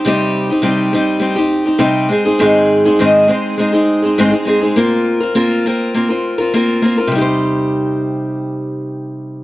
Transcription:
\new Staff \with { instrumentName = "Steel-string acoustic guitar" } { \time 4/4 \key c \minor \tempo 4 = 102 <c g c' ees' g'>8. <c' ees' g'>16 <c g c' ees' g'>8 <g c' ees' g'>8 <g c' ees' g'>16 <c' ees' g'>8 <c' ees' g'>16 <c g c' ees' g'>8 <aes c' ees' aes'>16 <aes c' ees' aes'>16 | <aes, ees aes c' ees' aes'>8. <aes c' ees' aes'>16 <aes, ees aes c' ees' aes'>8 <aes c' ees' aes'>8 <aes c' ees' aes'>16 <aes c' ees' aes'>8 <aes c' ees' aes'>16 <aes, ees aes c' ees' aes'>16 <aes c' ees' aes'>16 <aes c' ees' aes'>16 <aes c' ees' aes'>16 | <bes c' f' bes'>8. <c' f' bes'>16 <bes c' f' bes'>8 <bes c' f' bes'>8 <bes c' f' bes'>16 <c' f' bes'>8 <c' f' bes'>16 <bes c' f' bes'>8 <bes c' f' bes'>16 <c' f' bes'>16 | <c g ees' g' c''>1 | }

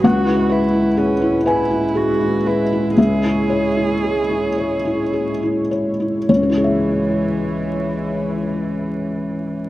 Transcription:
<<
  \new Staff \with { instrumentName = "Analog synth pad" } { \time 6/8 \key cis \minor \tempo 4. = 36 << { b'2. | cis''2. | cis''2. | } \\ { <gis e'>2.~ | <gis e'>2. | <gis e'>2. | } >> }
  \new Staff \with { instrumentName = "Cello" } { \time 6/8 \key cis \minor fis'8 e'8 cis'8 e'8 fis'8 e'8 | gis'2~ gis'16 r8. | e2. | }
  \new Staff \with { instrumentName = "Felt piano" } { \time 6/8 \key cis \minor << { fis''4. gis''4. | e''2~ e''8 r8 | <cis, cis cis' e' gis' cis'' e''>2. | } \\ { cis,16 e'16 b'16 e'16 gis'16 e'16 b'16 e'16 gis'16 e'16 b'16 e'16 | cis,16 e'16 cis''16 e'16 gis'16 e'16 cis''16 e'16 gis'16 e'16 cis''16 e'16 | r2. | } >> }
>>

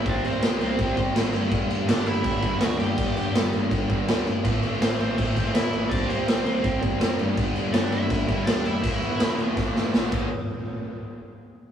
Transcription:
<<
  \new Staff \with { instrumentName = "Lead electric guitar" } { \time 4/4 \key g \major \tempo 4 = 164 <d' d''>8 <c' c''>2 r4. | r4 <d' d''>8 <e' e''>4. <fis' fis''>8 <g' g''>8~ | <g' g''>4. r2 r8 | r4 <c' c''>8 <c' c''>4. <e' e''>4 |
<d' d''>8 <c' c''>2 r4. | r4 <d' d''>8 <e' e''>4. <d' d''>8 <e' e''>8~ | <e' e''>4. r2 r8 | r1 | }
  \new Staff \with { instrumentName = "Distorted electric guitar" } { \clef bass \time 4/4 \key g \major <c g c'>4. <c g c'>4. <c g c'>8 <g, d g>8~ | <g, d g>4 <g, d g>4. <g, d g>4 <g, d g>8~ | <g, d g>4 <g, d g>4. <g, d g>4 r8 | <a, e a>4. <a, e a>4. <a, e a>4 |
<c g c'>4. <c g c'>4. <c g c'>8 <g, d g>8~ | <g, d g>4 <g, d g>4. <g, d g>4 r8 | <e, b, e>4. <e, b, e>4. <e, b, e>8 <e, b, e>8 | r1 | }
  \new Staff \with { instrumentName = "Distorted electric guitar" } { \clef bass \time 4/4 \key g \major <c g c'>4. <c g c'>4. <c g c'>8 <g, d g>8~ | <g, d g>4 <g, d g>4. <g, d g>4 <g, d g>8~ | <g, d g>4 <g, d g>4. <g, d g>4 r8 | <a, e a>4. <a, e a>4. <a, e a>4 |
<c g c'>4. <c g c'>4. <c g c'>8 <g, d g>8~ | <g, d g>4 <g, d g>4. <g, d g>4 r8 | <e, b, e>4. <e, b, e>4. <e, b, e>8 <e, b, e>8 | r1 | }
  \new Staff \with { instrumentName = "Overdriven electric guitar" } { \clef bass \time 4/4 \key g \major <c g c'>8 <c g c'>8 <c g c'>8 <c g c'>8 <c g c'>8 <c g c'>8 <c g c'>8 <g, d g>8 | <g, d g>8 <g, d g>8 <g, d g>8 <g, d g>8 <g, d g>8 <g, d g>8 <g, d g>8 <g, d g>8 | <g, d g>8 <g, d g>8 <g, d g>8 <g, d g>8 <g, d g>8 <g, d g>8 <g, d g>8 <g, d g>8 | <a, e a>8 <a, e a>8 <a, e a>8 <a, e a>8 <a, e a>8 <a, e a>8 <a, e a>8 <a, e a>8 |
<c g c'>8 <c g c'>8 <c g c'>8 <c g c'>8 <c g c'>8 <c g c'>8 <c g c'>8 <g, d g>8 | <g, d g>8 <g, d g>8 <g, d g>8 <g, d g>8 <g, d g>8 <g, d g>8 <g, d g>8 <g, d g>8 | <e, b, e>8 <e, b, e>8 <e, b, e>8 <e, b, e>8 <e, b, e>8 <e, b, e>8 <e, b, e>8 <e, b, e>8 | r1 | }
  \new Staff \with { instrumentName = "Picked electric bass" } { \clef bass \time 4/4 \key g \major c,8 c,8 c,8 c,8 c,4 a,,8 g,,8 | g,,8 g,,8 g,,8 g,,8 g,,4 d,8 g,,8 | g,,8 g,,8 g,,8 g,,8 g,,4 d,8 g,,8 | a,,8 a,,8 a,,8 a,,8 a,,4 e,8 a,,8 |
c,8 c,8 c,8 c,8 c,4 fis,,8 g,,8 | g,,8 g,,8 g,,8 g,,8 g,,4 d,8 fis,,8 | e,,8 e,,8 e,,8 e,,8 e,,4 b,,8 e,,8 | r1 | }
  \new DrumStaff \with { instrumentName = "Drums" } \drummode { \time 4/4 <cymc bd>8 cymc8 <cymc sn>8 cymc8 <cymc bd>8 <cymc bd>8 <cymc sn>8 cymc8 | <cymc bd>8 cymc8 <cymc sn>8 cymc8 <cymc bd>8 <cymc bd>8 <cymc sn>8 cymc8 | <cymc bd>8 cymc8 <cymc sn>8 cymc8 <cymc bd>8 <cymc bd>8 <cymc sn>8 cymc8 | <cymc bd>8 cymc8 <cymc sn>8 cymc8 <cymc bd>8 <cymc bd>8 <cymc sn>8 cymc8 |
<cymc bd>8 cymc8 <cymc sn>8 cymc8 <cymc bd>8 <cymc bd>8 <cymc sn>8 cymc8 | <cymc bd>8 cymc8 <cymc sn>8 cymc8 <cymc bd>8 <cymc bd>8 <cymc sn>8 cymc8 | <cymc bd>8 cymc8 <cymc sn>8 cymc8 <bd sn>8 sn8 sn8 <cymc bd>8 | r4 r4 r4 r4 | }
>>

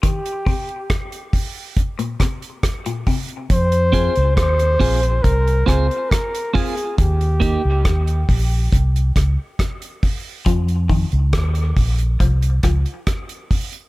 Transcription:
<<
  \new Staff \with { instrumentName = "Flugelhorn" } { \time 4/4 \key f \minor \tempo 4 = 69 g'4 r2. | c''4 c''4 bes'8 c''8 bes'8 aes'8 | g'2 r2 | r1 | }
  \new Staff \with { instrumentName = "Clean electric guitar" } { \time 4/4 \key f \minor r1 | r8 <c' f' aes'>8 r8 <c' f' aes'>8 r8 <c' f' aes'>8 r8 <c' f' aes'>8 | r8 <bes ees' g'>8 r2. | r1 | }
  \new Staff \with { instrumentName = "Clean electric guitar" } { \clef bass \time 4/4 \key f \minor ees16 r16 c16 r4. bes,16 c16 r8 bes,16 c16 r16 | r1 | r1 | f16 r16 ees16 r4 r16 f16 r16 f16 r4 r16 | }
  \new Staff \with { instrumentName = "Fingered electric bass" } { \clef bass \time 4/4 \key f \minor r1 | f,8. des,16 ees,8 bes,,8 c,8 des,16 r4 r16 | ees,8. des,16 ees,8 bes,,8 c,8 des,16 r4 r16 | f,8. des,16 ees,8 bes,,8 c,8 des,16 r4 r16 | }
  \new DrumStaff \with { instrumentName = "Drums" } \drummode { \time 4/4 <hh bd>16 hh16 <hho bd>16 hh16 <hh bd ss>16 hh16 <hho bd>8 <hh bd>16 hh16 <hh bd ss>16 hh16 <hh bd ss>16 hh16 <hho bd>16 hh16 | <hh bd>16 hh16 <hh bd>16 hh16 <hh bd ss>16 hh16 <hho bd>16 hh16 <hh bd>16 hh16 <hh bd ss>16 hh16 <hh bd ss>16 hh16 <hho bd>16 hh16 | <hh bd>16 hh16 <hh bd>8 <hh bd ss>16 hh16 <hho bd>8 <hh bd>16 hh16 <hh bd ss>8 <hh bd ss>16 hh16 <hho bd>8 | <hh bd>16 hh16 <hho bd>16 hh16 <hh bd ss>16 hh16 <hho bd>16 hh16 <hh bd>16 hh16 <hh bd ss>16 hh16 <hh bd ss>16 hh16 <hho bd>16 hh16 | }
>>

